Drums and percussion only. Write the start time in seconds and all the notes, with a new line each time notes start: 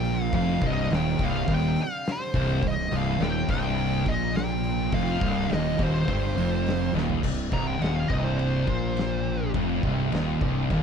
0.04 open hi-hat
0.33 kick, open hi-hat
0.61 kick, open hi-hat
0.90 snare, open hi-hat
1.19 kick, open hi-hat
1.48 kick, open hi-hat
1.76 open hi-hat
2.05 snare, open hi-hat
2.34 kick, open hi-hat
2.62 kick, open hi-hat
2.92 open hi-hat
3.20 snare, open hi-hat
3.49 kick, open hi-hat
3.78 open hi-hat
4.06 kick, open hi-hat
4.35 snare, open hi-hat
4.64 open hi-hat
4.92 kick, open hi-hat
5.21 kick, open hi-hat
5.50 snare, open hi-hat
5.79 kick, open hi-hat
6.08 kick, open hi-hat
6.38 open hi-hat
6.66 snare, open hi-hat
6.98 snare
7.10 floor tom
7.23 kick, crash
7.52 kick
7.82 snare, crash
8.10 kick
8.39 crash
8.68 kick
8.97 snare, crash
9.54 kick, crash
9.83 kick
10.12 snare, crash
10.41 kick
10.70 kick, crash